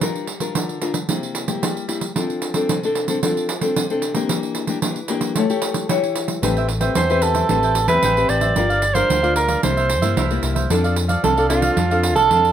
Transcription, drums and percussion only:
0.01 pandeiro medium
0.15 pandeiro soft
0.27 pandeiro medium
0.40 pandeiro soft
0.55 pandeiro medium
0.69 pandeiro soft
0.82 pandeiro medium
0.94 pandeiro medium
1.09 pandeiro medium
1.23 pandeiro soft
1.35 pandeiro medium
1.48 pandeiro medium
1.63 pandeiro medium
1.77 pandeiro soft
1.89 pandeiro medium
2.01 pandeiro soft
2.16 pandeiro medium
2.30 pandeiro soft
2.42 pandeiro medium
2.54 pandeiro soft
2.69 pandeiro medium
2.83 pandeiro soft
2.95 pandeiro medium
3.08 pandeiro soft
3.23 pandeiro medium
3.37 pandeiro soft
3.49 pandeiro medium
3.61 pandeiro medium
3.76 pandeiro medium
3.90 pandeiro soft
4.02 pandeiro medium
4.15 pandeiro soft
4.29 pandeiro medium
4.43 pandeiro soft
4.55 pandeiro medium
4.67 pandeiro soft
4.82 pandeiro medium
4.96 pandeiro soft
5.08 pandeiro medium
5.21 pandeiro soft
5.36 pandeiro medium
5.50 pandeiro soft
5.62 pandeiro medium
5.74 pandeiro soft
5.89 pandeiro medium
6.04 pandeiro soft
6.16 pandeiro medium
6.28 pandeiro soft
6.43 pandeiro medium
6.57 pandeiro soft
6.69 pandeiro soft
6.81 pandeiro soft
6.95 pandeiro medium
7.10 pandeiro soft
7.22 pandeiro medium
7.35 pandeiro soft
7.49 pandeiro medium
7.63 pandeiro soft
7.75 pandeiro medium
7.88 pandeiro soft
8.03 pandeiro medium
8.17 pandeiro soft
8.29 pandeiro medium
8.41 pandeiro soft
8.56 pandeiro medium
8.70 pandeiro soft
8.82 pandeiro medium
8.95 pandeiro soft
9.10 pandeiro medium
9.24 pandeiro soft
9.36 pandeiro medium
9.48 pandeiro soft
9.63 pandeiro medium
9.77 pandeiro soft
9.90 pandeiro medium
10.02 pandeiro soft
10.17 pandeiro medium
10.31 pandeiro soft
10.43 pandeiro soft
10.56 pandeiro soft
10.70 pandeiro medium
10.84 pandeiro soft
10.96 pandeiro medium
11.09 pandeiro soft
11.24 pandeiro medium
11.38 pandeiro soft
11.50 pandeiro medium
11.62 pandeiro medium
11.77 pandeiro medium
11.91 pandeiro soft
12.03 pandeiro medium
12.16 pandeiro soft
12.31 pandeiro medium
12.45 pandeiro soft

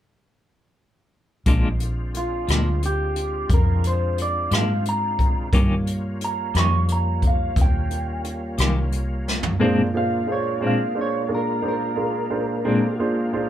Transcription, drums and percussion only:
1.46 kick medium
1.46 closed hi-hat medium
1.80 closed hi-hat medium
2.14 closed hi-hat medium
2.48 cross-stick medium
2.48 closed hi-hat medium
2.82 closed hi-hat medium
3.16 closed hi-hat medium
3.50 kick medium
3.50 closed hi-hat medium
3.84 closed hi-hat soft
4.18 closed hi-hat medium
4.51 cross-stick medium
4.51 closed hi-hat medium
4.86 closed hi-hat soft
5.19 kick medium
5.19 closed hi-hat soft
5.53 kick medium
5.53 closed hi-hat medium
5.87 closed hi-hat soft
6.21 closed hi-hat soft
6.55 cross-stick medium
6.55 closed hi-hat medium
6.89 closed hi-hat medium
7.22 kick medium
7.22 closed hi-hat soft
7.56 kick medium
7.56 closed hi-hat medium
7.91 closed hi-hat soft
8.24 closed hi-hat soft
8.58 cross-stick medium
8.58 closed hi-hat medium
8.92 closed hi-hat medium
9.28 snare soft
9.43 floor tom medium

